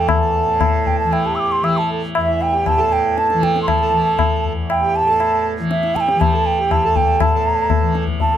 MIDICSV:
0, 0, Header, 1, 5, 480
1, 0, Start_track
1, 0, Tempo, 513259
1, 82, Time_signature, 7, 2, 24, 8
1, 3921, Tempo, 500417
1, 7932, End_track
2, 0, Start_track
2, 0, Title_t, "Bansuri"
2, 0, Program_c, 0, 73
2, 0, Note_on_c, 0, 79, 78
2, 83, Note_on_c, 0, 81, 78
2, 97, Note_off_c, 0, 79, 0
2, 813, Note_on_c, 0, 79, 72
2, 827, Note_off_c, 0, 81, 0
2, 925, Note_off_c, 0, 79, 0
2, 931, Note_on_c, 0, 81, 81
2, 1051, Note_on_c, 0, 79, 75
2, 1065, Note_off_c, 0, 81, 0
2, 1180, Note_on_c, 0, 81, 67
2, 1194, Note_off_c, 0, 79, 0
2, 1266, Note_on_c, 0, 88, 58
2, 1280, Note_off_c, 0, 81, 0
2, 1305, Note_on_c, 0, 86, 90
2, 1319, Note_off_c, 0, 88, 0
2, 1420, Note_on_c, 0, 84, 84
2, 1434, Note_off_c, 0, 86, 0
2, 1536, Note_on_c, 0, 88, 89
2, 1550, Note_off_c, 0, 84, 0
2, 1658, Note_on_c, 0, 81, 74
2, 1672, Note_off_c, 0, 88, 0
2, 1775, Note_off_c, 0, 81, 0
2, 2023, Note_on_c, 0, 76, 76
2, 2264, Note_on_c, 0, 79, 80
2, 2278, Note_off_c, 0, 76, 0
2, 2499, Note_on_c, 0, 81, 90
2, 2513, Note_off_c, 0, 79, 0
2, 2735, Note_on_c, 0, 79, 80
2, 2749, Note_off_c, 0, 81, 0
2, 2971, Note_on_c, 0, 81, 91
2, 2985, Note_off_c, 0, 79, 0
2, 3210, Note_on_c, 0, 79, 83
2, 3224, Note_off_c, 0, 81, 0
2, 3385, Note_off_c, 0, 79, 0
2, 3390, Note_on_c, 0, 84, 56
2, 3445, Note_on_c, 0, 81, 81
2, 3459, Note_off_c, 0, 84, 0
2, 4163, Note_off_c, 0, 81, 0
2, 4412, Note_on_c, 0, 79, 83
2, 4656, Note_on_c, 0, 81, 105
2, 4670, Note_off_c, 0, 79, 0
2, 5135, Note_off_c, 0, 81, 0
2, 5376, Note_on_c, 0, 76, 77
2, 5612, Note_on_c, 0, 81, 80
2, 5627, Note_off_c, 0, 76, 0
2, 5658, Note_on_c, 0, 79, 87
2, 5667, Note_off_c, 0, 81, 0
2, 5849, Note_on_c, 0, 81, 83
2, 5863, Note_off_c, 0, 79, 0
2, 6097, Note_on_c, 0, 79, 83
2, 6111, Note_off_c, 0, 81, 0
2, 6340, Note_on_c, 0, 81, 89
2, 6354, Note_off_c, 0, 79, 0
2, 6577, Note_on_c, 0, 79, 85
2, 6591, Note_off_c, 0, 81, 0
2, 6824, Note_on_c, 0, 81, 81
2, 6838, Note_off_c, 0, 79, 0
2, 7532, Note_off_c, 0, 81, 0
2, 7778, Note_on_c, 0, 81, 84
2, 7932, Note_off_c, 0, 81, 0
2, 7932, End_track
3, 0, Start_track
3, 0, Title_t, "Harmonium"
3, 0, Program_c, 1, 20
3, 0, Note_on_c, 1, 69, 58
3, 176, Note_off_c, 1, 69, 0
3, 190, Note_on_c, 1, 69, 56
3, 1167, Note_on_c, 1, 67, 53
3, 1193, Note_off_c, 1, 69, 0
3, 1651, Note_on_c, 1, 76, 59
3, 1665, Note_off_c, 1, 67, 0
3, 1774, Note_on_c, 1, 69, 52
3, 1775, Note_off_c, 1, 76, 0
3, 1885, Note_off_c, 1, 69, 0
3, 2126, Note_on_c, 1, 64, 52
3, 2368, Note_on_c, 1, 67, 57
3, 2376, Note_off_c, 1, 64, 0
3, 2596, Note_on_c, 1, 69, 61
3, 2617, Note_off_c, 1, 67, 0
3, 3063, Note_off_c, 1, 69, 0
3, 3077, Note_on_c, 1, 69, 61
3, 3545, Note_off_c, 1, 69, 0
3, 3559, Note_on_c, 1, 69, 55
3, 4244, Note_off_c, 1, 69, 0
3, 4525, Note_on_c, 1, 67, 55
3, 4760, Note_on_c, 1, 69, 57
3, 4775, Note_off_c, 1, 67, 0
3, 5213, Note_off_c, 1, 69, 0
3, 5481, Note_on_c, 1, 64, 48
3, 5728, Note_on_c, 1, 67, 58
3, 5735, Note_off_c, 1, 64, 0
3, 5968, Note_on_c, 1, 69, 59
3, 5978, Note_off_c, 1, 67, 0
3, 6215, Note_on_c, 1, 67, 61
3, 6218, Note_off_c, 1, 69, 0
3, 6461, Note_off_c, 1, 67, 0
3, 6463, Note_on_c, 1, 69, 65
3, 6931, Note_off_c, 1, 69, 0
3, 6946, Note_on_c, 1, 69, 53
3, 7613, Note_off_c, 1, 69, 0
3, 7887, Note_on_c, 1, 69, 62
3, 7932, Note_off_c, 1, 69, 0
3, 7932, End_track
4, 0, Start_track
4, 0, Title_t, "Tanpura"
4, 0, Program_c, 2, 104
4, 0, Note_on_c, 2, 40, 57
4, 0, Note_on_c, 2, 45, 57
4, 0, Note_on_c, 2, 52, 58
4, 421, Note_off_c, 2, 45, 0
4, 425, Note_on_c, 2, 45, 58
4, 968, Note_off_c, 2, 52, 0
4, 968, Note_on_c, 2, 52, 58
4, 1505, Note_off_c, 2, 52, 0
4, 1505, Note_on_c, 2, 52, 56
4, 2026, Note_off_c, 2, 40, 0
4, 2030, Note_on_c, 2, 40, 53
4, 2567, Note_off_c, 2, 45, 0
4, 2570, Note_on_c, 2, 45, 51
4, 3113, Note_off_c, 2, 52, 0
4, 3113, Note_on_c, 2, 52, 56
4, 3646, Note_off_c, 2, 52, 0
4, 3646, Note_on_c, 2, 52, 53
4, 4170, Note_off_c, 2, 40, 0
4, 4174, Note_on_c, 2, 40, 53
4, 4702, Note_off_c, 2, 45, 0
4, 4705, Note_on_c, 2, 45, 50
4, 5260, Note_off_c, 2, 52, 0
4, 5260, Note_on_c, 2, 52, 57
4, 5789, Note_off_c, 2, 52, 0
4, 5789, Note_on_c, 2, 52, 52
4, 6311, Note_off_c, 2, 40, 0
4, 6315, Note_on_c, 2, 40, 58
4, 6855, Note_off_c, 2, 45, 0
4, 6859, Note_on_c, 2, 45, 56
4, 7395, Note_off_c, 2, 52, 0
4, 7395, Note_on_c, 2, 52, 52
4, 7932, Note_off_c, 2, 40, 0
4, 7932, Note_off_c, 2, 45, 0
4, 7932, Note_off_c, 2, 52, 0
4, 7932, End_track
5, 0, Start_track
5, 0, Title_t, "Tabla"
5, 81, Note_on_c, 9, 60, 89
5, 81, Note_on_c, 9, 64, 74
5, 174, Note_off_c, 9, 60, 0
5, 174, Note_off_c, 9, 64, 0
5, 567, Note_on_c, 9, 60, 73
5, 567, Note_on_c, 9, 64, 68
5, 660, Note_off_c, 9, 60, 0
5, 660, Note_off_c, 9, 64, 0
5, 810, Note_on_c, 9, 64, 42
5, 904, Note_off_c, 9, 64, 0
5, 1055, Note_on_c, 9, 60, 70
5, 1149, Note_off_c, 9, 60, 0
5, 1533, Note_on_c, 9, 60, 71
5, 1627, Note_off_c, 9, 60, 0
5, 2012, Note_on_c, 9, 60, 73
5, 2105, Note_off_c, 9, 60, 0
5, 2251, Note_on_c, 9, 60, 49
5, 2344, Note_off_c, 9, 60, 0
5, 2490, Note_on_c, 9, 60, 69
5, 2490, Note_on_c, 9, 64, 66
5, 2584, Note_off_c, 9, 60, 0
5, 2584, Note_off_c, 9, 64, 0
5, 2971, Note_on_c, 9, 62, 61
5, 3065, Note_off_c, 9, 62, 0
5, 3087, Note_on_c, 9, 62, 53
5, 3181, Note_off_c, 9, 62, 0
5, 3208, Note_on_c, 9, 37, 59
5, 3302, Note_off_c, 9, 37, 0
5, 3329, Note_on_c, 9, 62, 54
5, 3422, Note_off_c, 9, 62, 0
5, 3442, Note_on_c, 9, 60, 92
5, 3442, Note_on_c, 9, 64, 74
5, 3535, Note_off_c, 9, 60, 0
5, 3535, Note_off_c, 9, 64, 0
5, 3917, Note_on_c, 9, 60, 72
5, 3917, Note_on_c, 9, 64, 62
5, 4012, Note_off_c, 9, 60, 0
5, 4012, Note_off_c, 9, 64, 0
5, 4166, Note_on_c, 9, 64, 43
5, 4262, Note_off_c, 9, 64, 0
5, 4406, Note_on_c, 9, 60, 76
5, 4502, Note_off_c, 9, 60, 0
5, 4889, Note_on_c, 9, 60, 69
5, 4985, Note_off_c, 9, 60, 0
5, 5374, Note_on_c, 9, 62, 71
5, 5470, Note_off_c, 9, 62, 0
5, 5494, Note_on_c, 9, 62, 56
5, 5590, Note_off_c, 9, 62, 0
5, 5618, Note_on_c, 9, 37, 51
5, 5714, Note_off_c, 9, 37, 0
5, 5736, Note_on_c, 9, 62, 60
5, 5832, Note_off_c, 9, 62, 0
5, 5857, Note_on_c, 9, 60, 69
5, 5857, Note_on_c, 9, 64, 62
5, 5953, Note_off_c, 9, 60, 0
5, 5953, Note_off_c, 9, 64, 0
5, 6337, Note_on_c, 9, 60, 71
5, 6337, Note_on_c, 9, 64, 59
5, 6433, Note_off_c, 9, 60, 0
5, 6433, Note_off_c, 9, 64, 0
5, 6574, Note_on_c, 9, 64, 51
5, 6670, Note_off_c, 9, 64, 0
5, 6810, Note_on_c, 9, 60, 85
5, 6810, Note_on_c, 9, 64, 86
5, 6906, Note_off_c, 9, 60, 0
5, 6906, Note_off_c, 9, 64, 0
5, 7285, Note_on_c, 9, 60, 64
5, 7285, Note_on_c, 9, 64, 67
5, 7381, Note_off_c, 9, 60, 0
5, 7381, Note_off_c, 9, 64, 0
5, 7526, Note_on_c, 9, 62, 44
5, 7622, Note_off_c, 9, 62, 0
5, 7643, Note_on_c, 9, 64, 51
5, 7739, Note_off_c, 9, 64, 0
5, 7765, Note_on_c, 9, 63, 70
5, 7765, Note_on_c, 9, 64, 60
5, 7861, Note_off_c, 9, 63, 0
5, 7861, Note_off_c, 9, 64, 0
5, 7932, End_track
0, 0, End_of_file